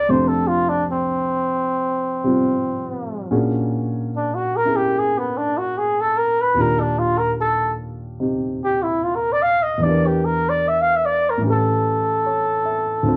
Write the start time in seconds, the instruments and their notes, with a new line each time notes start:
Already playing: grand piano C2 C3 A#3 D4, flugelhorn D5
0.09 grand piano F2 C3 A3 D4 G4, flugelhorn C5
0.28 flugelhorn A4
0.47 flugelhorn F4
0.69 flugelhorn D4
0.91 flugelhorn C4
2.24 grand piano C3 G3 C4 F4
3.31 grand piano A#2 A#3 C#4 D4 F#4 G#4
4.16 flugelhorn D4
4.35 flugelhorn F#4
4.57 flugelhorn A#4
4.65 grand piano C#4 E4 G#4 A#4
4.76 flugelhorn G4
4.99 flugelhorn G#4
5.18 flugelhorn B3
5.37 flugelhorn D4
5.58 flugelhorn F#4
5.78 flugelhorn G#4
6.01 flugelhorn A4
6.18 flugelhorn A#4
6.41 flugelhorn B4
6.54 grand piano D#2 A#2 D4
6.59 grand piano F4 G4, flugelhorn A#4
6.80 flugelhorn D4
6.99 flugelhorn F4
7.18 flugelhorn A#4
7.40 flugelhorn A4
8.20 grand piano C3 D#4 G4
8.64 flugelhorn G4
8.83 flugelhorn E4
9.04 flugelhorn F4
9.15 flugelhorn A#4
9.32 flugelhorn D5
9.42 flugelhorn F5
9.63 flugelhorn D#5
9.78 grand piano E2 E3
9.83 grand piano D4 G4, flugelhorn D5
9.89 grand piano A#4
10.07 flugelhorn G4
10.25 flugelhorn A#4
10.49 flugelhorn D5
10.68 flugelhorn E5
10.81 flugelhorn F5
10.96 flugelhorn E5
11.05 flugelhorn D5
11.30 flugelhorn A#4
11.37 grand piano A2 E3
11.44 grand piano C#4 G4
11.49 grand piano A4, flugelhorn A4
12.26 grand piano C#5
12.65 grand piano E5
13.03 grand piano D2 D3 C4 F4
13.08 grand piano C5